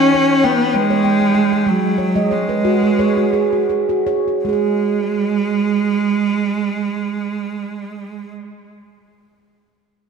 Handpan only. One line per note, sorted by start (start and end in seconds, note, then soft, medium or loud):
0.00 1.63 E3 medium
0.00 0.30 G5 medium
0.14 0.44 C#5 medium
0.44 0.73 G5 medium
0.74 1.03 G5 soft
0.90 1.21 C#5 medium
1.04 1.20 G5 soft
1.21 1.34 G5 soft
1.35 1.51 G5 medium
1.52 1.84 G5 soft
1.66 1.98 G#3 medium
1.98 2.29 C#5 medium
2.16 2.49 G#3 medium
2.16 2.46 D#5 medium
2.31 2.62 C#5 medium
2.49 2.80 B4 medium
2.65 2.99 F#4 medium
2.65 2.96 C#5 soft
2.83 3.15 B4 medium
2.99 3.31 G#4 medium
2.99 3.34 C#5 medium
3.17 3.50 F#4 soft
3.33 3.67 G#4 medium
3.53 3.55 F#4 soft
3.70 4.04 G#4 soft
3.89 4.24 F#4 medium
4.07 4.42 G#4 soft
4.07 4.45 C#5 medium
4.28 4.63 F#4 soft
4.45 9.03 G#3 medium
4.45 4.53 G#4 medium
4.53 9.10 G#4 soft